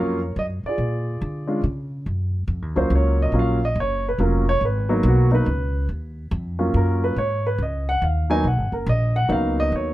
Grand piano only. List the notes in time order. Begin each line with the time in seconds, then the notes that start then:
Already playing: F#3 A#3 C#4 F4 A#4 C#5 F5
0.39 D#5
0.66 F4 G#4 D5
1.47 G#3 C#4 D4 F4
2.76 F#3 A#3 C#4 F4 C5
2.95 C#5
3.22 D#5
3.34 F#3 A#3 C#4 F4
3.39 F5
3.65 D#5
3.80 C#5
4.09 B4
4.20 F#3 A#3 C#4 F4 A#4
4.49 C#5
4.65 B4
4.89 F#3 A#3 B3 D#4
5.08 F#4
5.31 F#3 A#3 B3 D#4 B4
6.59 F#3 A#3 C#4 F4
6.77 A#4
7.04 B4
7.18 C#5
7.47 B4
7.63 D#5
7.89 F#5
8.04 F5
8.30 F#3 A#3 B3 D#4 G#5
8.47 F#5
8.73 A#4
8.89 D#5
9.16 F#5
9.29 F#3 A#3 B3 D#4 F5
9.60 D#5
9.76 C#5